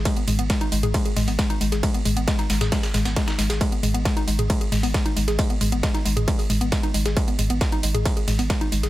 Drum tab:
RD |x---x---x---x---|x---x---x---x---|x---x---x---x---|x---x---x---x---|
HH |xxoxxxoxxxooxxox|xxoxxxoxxooxxxox|xxoxxxoxxxooxxox|xxoxxxoxxooxxxox|
TB |x-x-x-x-x---x-x-|x-x-x-xxxxxxxxxx|x-x-x-x-x---x-x-|x-x-x-x-x-x-x-x-|
SD |----o-----o-o--o|----oooooooooooo|----o-----o-o--o|----oo------o--o|
T2 |--o----o--o-----|--o----o--o-----|--o----o--o-----|--o----o--o-----|
BD |o---o---o---o---|o---o---o---o---|o---o---o---o---|o---o---o---o---|

RD |x---x---x---x---|
HH |xxoxxxoxxxooxxox|
TB |x-x-x-x-x---x-x-|
SD |----o-----o-o--o|
T2 |--o----o--o-----|
BD |o---o---o---o---|